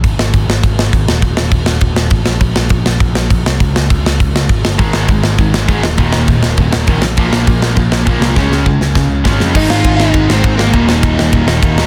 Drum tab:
CC |x-x-x-x-|x-x-x-x-|x-x-x-x-|x-x-x-x-|
RD |--------|--------|--------|--------|
SD |-o-o-o-o|-o-o-o-o|-o-o-o-o|-o-o-o-o|
BD |o-o-o-o-|o-o-o-o-|o-o-o-o-|o-o-o-o-|

CC |x-x-x-x-|x-x-x-x-|x-x-x-x-|--------|
RD |--------|--------|--------|--------|
SD |-o-o-o-o|-o-o-o-o|-o-o-o-o|oo-oo-oo|
BD |o-o-o-o-|o-o-o-o-|o-o-o-o-|o-o-o-o-|

CC |x-------|--------|
RD |--x-x-x-|x-x-x-x-|
SD |-o-o-o-o|-o-o-o-o|
BD |o-o-o-o-|o-o-o-o-|